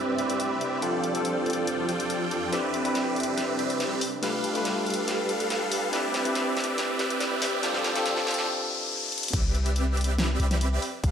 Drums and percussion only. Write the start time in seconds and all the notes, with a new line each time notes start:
0.18 closed hi-hat
0.30 closed hi-hat
0.40 closed hi-hat
0.61 closed hi-hat
0.82 closed hi-hat
1.04 closed hi-hat
1.15 closed hi-hat
1.25 closed hi-hat
1.46 closed hi-hat
1.50 closed hi-hat
1.53 closed hi-hat
1.67 closed hi-hat
1.89 closed hi-hat
2.00 closed hi-hat
2.10 closed hi-hat
2.31 closed hi-hat
2.53 snare, closed hi-hat
2.74 closed hi-hat
2.85 closed hi-hat
2.95 snare, closed hi-hat
3.16 closed hi-hat
3.20 closed hi-hat
3.23 closed hi-hat
3.38 snare, closed hi-hat
3.59 closed hi-hat
3.70 closed hi-hat
3.80 snare, closed hi-hat
4.01 open hi-hat
4.23 snare, closed hi-hat
4.44 closed hi-hat
4.55 closed hi-hat
4.65 snare, closed hi-hat
4.87 closed hi-hat
4.90 closed hi-hat
4.94 closed hi-hat
5.08 snare, closed hi-hat
5.29 closed hi-hat
5.40 closed hi-hat
5.50 snare, closed hi-hat
5.72 open hi-hat
5.93 snare, closed hi-hat
6.14 snare, closed hi-hat
6.25 closed hi-hat
6.35 snare, closed hi-hat
6.57 snare, closed hi-hat
6.60 closed hi-hat
6.64 closed hi-hat
6.78 snare, closed hi-hat
6.99 snare, closed hi-hat
7.10 closed hi-hat
7.20 snare, closed hi-hat
7.42 snare, open hi-hat
7.63 snare, closed hi-hat
7.74 snare
7.84 snare, closed hi-hat
7.96 snare, closed hi-hat
8.06 snare, closed hi-hat
8.17 snare
8.27 snare, closed hi-hat
8.31 closed hi-hat
8.34 closed hi-hat
8.38 snare
9.12 closed hi-hat
9.18 closed hi-hat
9.23 closed hi-hat
9.28 closed hi-hat
9.33 kick, closed hi-hat, crash
9.55 closed hi-hat
9.66 closed hi-hat
9.76 closed hi-hat
9.97 closed hi-hat
10.01 closed hi-hat
10.04 closed hi-hat
10.18 snare, closed hi-hat
10.40 closed hi-hat
10.51 snare, closed hi-hat
10.61 closed hi-hat
10.82 open hi-hat
11.04 kick, closed hi-hat